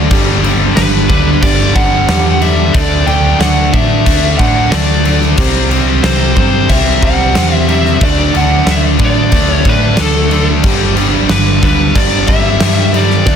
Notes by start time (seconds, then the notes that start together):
Already playing: D2 D4
0.09 G1 G2 D3 G3, kick, crash
0.43 G2 D3 G3, crash
0.75 G1 G2 D3 G3 B4, snare, crash
1.09 D2 G2 D3 G3 B4, kick, crash
1.41 G1 G2 D3 G3 D5, kick, crash
1.74 G1 G2 D3 G3 F#5, kick, crash
2.07 E2 G2 D3 G3, snare, crash
2.40 G2 D3 G3 E5, crash
2.74 D2 D3 A3 D4 D5, kick, crash
3.06 D2 D3 A3 D4 G5, crash
3.39 D2 D3 A3 D4 F#5, snare, crash
3.72 A2 D3 A3 D4 E5, kick, crash
4.06 D2 D3 A3 D4, kick, crash
4.38 A2 D3 A3 D4 F#5, kick, crash
4.71 D2 D3 A3 D4 D5, snare, crash
5.05 D3 A3 D4, crash
5.21 snare
5.37 C2 C3 G3 C4, kick, crash
5.70 C3 G3 C4, crash
6.03 C2 C3 G3 C4 C5, snare, crash
6.36 G2 C3 G3 C4 C5, kick, crash
6.69 C2 C3 G3 C4 E5, kick, crash
7.02 C2 C3 G3 C4 F#5, kick, crash
7.34 E2 C3 G3 C4, snare, crash
7.55 E5
7.68 C3 G3 C4 E5, crash
7.86 snare
8.01 D2 D3 A3 D4 D5, kick, crash
8.34 D2 D3 A3 D4 F#5, crash
8.65 D2 D3 A3 D4, snare, crash
8.71 E5
8.99 A2 D3 A3 D4, kick, crash
9.05 D5
9.32 D2 D3 A3 D4, kick, crash
9.51 C#5
9.65 A2 D3 A3 D4, kick, crash
9.69 B4
9.97 D2 D3 A3 D4, snare, crash
10.01 A4
10.31 D3 A3 D4, crash
10.63 G1 G2 D3 G3, kick, crash
10.97 G2 D3 G3, crash
11.29 G1 G2 D3 G3 B4, snare, crash
11.63 D2 G2 D3 G3 B4, kick, crash
11.95 G1 G2 D3 G3 D5, kick, crash
12.27 G1 G2 D3 G3 E5, kick, crash
12.60 G2 D3 G3, snare, crash
12.93 G2 D3 G3 D5, crash
13.10 snare
13.26 D2 D3 A3 D4, kick, snare